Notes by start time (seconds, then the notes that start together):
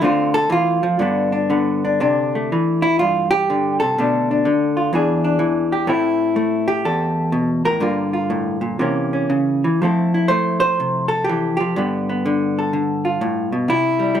0.02 D3 A3 C4 F4
0.34 A4
0.50 E3 F4
0.83 F3
0.99 G2 D3 B3 D4
1.32 D4
1.50 D3 B3
1.85 D4
2.00 C3 D4
2.35 A3
2.52 E3
2.82 E4
2.99 G2 F4
3.31 G4
3.50 D3
3.80 C3 A4
3.98 B2 D3 A3 D4
4.31 D4
4.45 D3
4.77 F4
4.93 E2 E3 D4 G#4
5.24 D4
5.39 E3
5.72 G4
5.87 A2 A3 C4 E4
6.36 A3
6.68 G4
6.85 E2 A4
7.32 B2
7.65 A2 A#4
7.80 G2 D3 A#3 F4
8.13 F4
8.30 A2
8.61 A#2
8.79 C3 E3 A#3 C#4
9.13 C#4
9.30 C#3
9.64 E3
9.82 F3 A3 C4 E4 A4
10.14 E4
10.28 A3 C5
10.60 C5
10.80 C3
11.08 A4
11.24 G4
11.29 E3
11.57 F3 G4
11.76 G2 D3 B3
12.09 B3
12.26 D3
12.59 A4
12.73 D3
13.05 F4
13.21 A2
13.52 B2
13.68 C3 E4
13.99 G3
14.15 G3